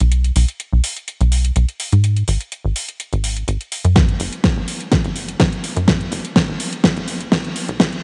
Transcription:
0.00 analog synth bass B1, closed hi-hat
0.12 closed hi-hat
0.24 closed hi-hat
0.36 analog synth bass B1, open hi-hat
0.48 closed hi-hat
0.60 closed hi-hat
0.73 analog synth bass B1
0.84 open hi-hat
0.96 closed hi-hat
1.08 closed hi-hat
1.21 analog synth bass B1, closed hi-hat
1.32 open hi-hat
1.45 closed hi-hat
1.56 analog synth bass B1, closed hi-hat
1.69 closed hi-hat
1.80 open hi-hat
1.93 analog synth bass G#2, closed hi-hat
2.04 closed hi-hat
2.17 closed hi-hat
2.28 analog synth bass G#1, open hi-hat
2.41 closed hi-hat
2.52 closed hi-hat
2.65 analog synth bass G#1
2.76 open hi-hat
2.89 closed hi-hat
3.00 closed hi-hat
3.13 analog synth bass G#1, closed hi-hat
3.24 open hi-hat
3.37 closed hi-hat
3.48 analog synth bass G#1, closed hi-hat
3.61 closed hi-hat
3.72 open hi-hat
3.85 analog synth bass F#2, closed hi-hat
3.96 kick, snare, closed hi-hat
4.09 closed hi-hat
4.20 analog synth bass F#1, open hi-hat
4.33 closed hi-hat
4.44 kick, snare, closed hi-hat
4.57 analog synth bass F#1
4.68 open hi-hat
4.81 closed hi-hat
4.92 kick, snare, closed hi-hat
5.05 analog synth bass F#1, closed hi-hat
5.16 open hi-hat
5.28 closed hi-hat
5.40 analog synth bass F#1, kick, snare, closed hi-hat
5.53 closed hi-hat
5.64 open hi-hat
5.77 analog synth bass F#2, closed hi-hat
5.88 kick, snare, closed hi-hat
6.01 closed hi-hat
6.12 analog synth bass F#1, open hi-hat
6.25 closed hi-hat
6.36 kick, snare, closed hi-hat
6.49 analog synth bass F#1
6.60 open hi-hat
6.73 closed hi-hat
6.84 kick, snare, closed hi-hat
6.97 analog synth bass F#1, closed hi-hat
7.08 open hi-hat
7.21 closed hi-hat
7.32 analog synth bass F#1, kick, snare, closed hi-hat
7.45 closed hi-hat
7.56 open hi-hat
7.68 analog synth bass B1, closed hi-hat
7.80 kick, snare, closed hi-hat
7.93 closed hi-hat

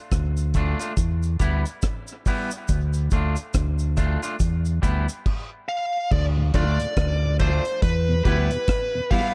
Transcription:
0.12 fingered electric bass D2, kick, cross-stick, closed hi-hat, cabasa
0.37 cabasa
0.54 clean electric guitar A3 D4 F4, kick, closed hi-hat, cabasa
0.80 clean electric guitar A3 D4 F4, closed hi-hat, cabasa
0.97 fingered electric bass E2, kick, closed hi-hat, cabasa
1.23 cabasa
1.40 fingered electric bass D2, clean electric guitar G3 B3 E4, kick, closed hi-hat, cabasa
1.65 closed hi-hat, cabasa
1.82 kick, cross-stick, closed hi-hat, cabasa
2.08 cabasa
2.26 clean electric guitar G3 B3 E4, kick, open hi-hat, cabasa
2.51 closed hi-hat, cabasa
2.68 fingered electric bass D2, kick, closed hi-hat, cabasa
2.93 cabasa
3.11 fingered electric bass D2, clean electric guitar A3 D4 F4, kick, closed hi-hat, cabasa
3.36 closed hi-hat, cabasa
3.54 fingered electric bass D2, kick, cross-stick, closed hi-hat, cabasa
3.79 cabasa
3.97 clean electric guitar A3 D4 F4, kick, closed hi-hat, cabasa
4.22 clean electric guitar A3 D4 F4, closed hi-hat, cabasa
4.40 fingered electric bass E2, kick, closed hi-hat, cabasa
4.65 cabasa
4.82 fingered electric bass D2, clean electric guitar G3 B3 E4, kick, closed hi-hat, cabasa
5.08 closed hi-hat, cabasa
5.26 kick, crash
5.69 lead electric guitar F5
6.11 fingered electric bass D2, lead electric guitar D5, kick, crash
6.37 tonewheel organ D2 A2
6.54 fingered electric bass D2, tonewheel organ F3 A3 D4, clean electric guitar A3 D4 F4, lead electric guitar D5, kick, closed hi-hat
6.80 tonewheel organ D2 A2, closed hi-hat
6.97 fingered electric bass D2, kick, cross-stick, closed hi-hat
7.24 tonewheel organ D2 A2
7.40 tonewheel organ F3 A3 D4, clean electric guitar A3 D4 F4, lead electric guitar C5, kick, closed hi-hat
7.65 closed hi-hat
7.82 fingered electric bass E2, lead electric guitar B4, kick, closed hi-hat
8.09 tonewheel organ E2 B2
8.25 fingered electric bass D2, tonewheel organ E3 G3 B3, clean electric guitar G3 B3 E4, lead electric guitar B4, kick, closed hi-hat
8.51 tonewheel organ E2 B2, closed hi-hat
8.68 kick, cross-stick, closed hi-hat
8.95 tonewheel organ E2 B2
9.11 tonewheel organ E3 G3 B3, clean electric guitar G3 B3 E4, lead electric guitar F5, kick, open hi-hat

